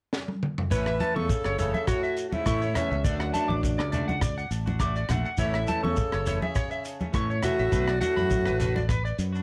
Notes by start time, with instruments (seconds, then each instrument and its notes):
0.13 snare
0.28 high tom
0.43 mid tom
0.58 floor tom
0.71 fingered electric bass A1, clean electric guitar E3 A3 C#4 C#5, trombone E3, alto saxophone B4, kick, shekere
0.86 clean electric guitar E5, cross-stick
0.99 clean electric guitar E3 A3 C#4 A5, closed hi-hat, high conga
1.15 fingered electric bass E2, trombone C#3, clean electric guitar A3 C#4 C#6, alto saxophone A4, high conga
1.29 kick, shekere
1.44 fingered electric bass F#1, clean electric guitar C#5, cross-stick
1.57 trombone C#3, clean electric guitar E3 A3 C#4 C#5, alto saxophone A4, closed hi-hat, low conga, shekere
1.74 clean electric guitar E5, high conga, shekere
1.87 trombone A2, alto saxophone F#4, clean electric guitar C#5, kick, cross-stick, shekere
2.03 clean electric guitar E5, shekere
2.17 closed hi-hat, shekere
2.29 trombone A2, clean electric guitar C#4, alto saxophone F#4, high conga, shekere
2.33 trombone G#2, clean electric guitar A3, alto saxophone E4
2.46 fingered electric bass A2, trombone A2, clean electric guitar E3 A3 C#4 C#6, alto saxophone E4, kick, cross-stick, shekere
2.62 clean electric guitar C#5, shekere
2.75 trombone E2, clean electric guitar E3 A3 C#4 E5, alto saxophone C#4, cross-stick, closed hi-hat, low conga, shekere
2.91 fingered electric bass C#2, clean electric guitar E5, shekere
3.04 fingered electric bass D2, trombone F#2, clean electric guitar A3 D4 F#4 D5, alto saxophone D4, kick, shekere
3.20 clean electric guitar F#5, cross-stick
3.33 clean electric guitar A3 D4 F#4 A5, closed hi-hat, high conga, shekere
3.48 fingered electric bass A1, clean electric guitar D4 F#4 D6, high conga
3.63 kick, shekere
3.78 fingered electric bass C#2, clean electric guitar D5, cross-stick
3.92 clean electric guitar A3 D4 F#4 D5, closed hi-hat, low conga, shekere
4.08 clean electric guitar F#5, high conga, shekere
4.21 clean electric guitar D5, kick, cross-stick, shekere
4.38 clean electric guitar F#5, shekere
4.51 fingered electric bass A1, closed hi-hat, shekere
4.66 clean electric guitar D4 F#4, high conga, shekere
4.80 clean electric guitar A3 F#4 D6, muted clean electric guitar stroke, kick, cross-stick, shekere
4.96 clean electric guitar D5, shekere
5.09 fingered electric bass A#1, clean electric guitar A3 D4 F#4 F#5, cross-stick, closed hi-hat, low conga, shekere
5.25 clean electric guitar F#5, shekere
5.37 fingered electric bass A1, trombone A2, clean electric guitar E3 A3 C#4 C#5, alto saxophone E4, kick, shekere
5.54 clean electric guitar E5, cross-stick
5.67 clean electric guitar E3 A3 C#4 A5, closed hi-hat, high conga, shekere
5.83 fingered electric bass E2, trombone C#3, clean electric guitar A3 C#4 C#6, alto saxophone A4, high conga
5.97 kick, shekere
6.12 fingered electric bass F#1, clean electric guitar C#5, cross-stick
6.26 clean electric guitar E3 A3 C#4 C#5, closed hi-hat, low conga, shekere
6.42 trombone C#3, alto saxophone G#4, clean electric guitar E5, high conga, shekere
6.55 clean electric guitar C#5, kick, cross-stick, shekere
6.71 clean electric guitar E5, shekere
6.84 closed hi-hat, shekere
7.00 clean electric guitar A3 C#4, high conga, shekere
7.12 fingered electric bass A2, clean electric guitar E3 A3 C#4 C#6, kick, cross-stick, shekere
7.30 clean electric guitar C#5, shekere
7.43 trombone A2, clean electric guitar E3 A3 C#4 E5, alto saxophone F#4, cross-stick, closed hi-hat, low conga, shekere
7.59 fingered electric bass A1, clean electric guitar E5, shekere
7.71 fingered electric bass B1, clean electric guitar A3 D4 F#4 B4, kick, shekere
7.88 clean electric guitar D5, cross-stick
8.00 trombone A2, clean electric guitar A3 D4 F#4 F#5, alto saxophone F#4, closed hi-hat, high conga, shekere
8.16 fingered electric bass F#2, clean electric guitar D4 F#4 B5, high conga, shekere
8.31 kick, shekere
8.45 fingered electric bass A1, clean electric guitar B4, cross-stick, shekere
8.59 clean electric guitar A3 D4 F#4 B4, closed hi-hat, low conga, shekere
8.76 clean electric guitar D5, high conga, shekere
8.89 clean electric guitar B4, kick, cross-stick, shekere
9.05 clean electric guitar D5, shekere
9.19 fingered electric bass F#2, closed hi-hat, shekere
9.33 clean electric guitar D4 F#4, shekere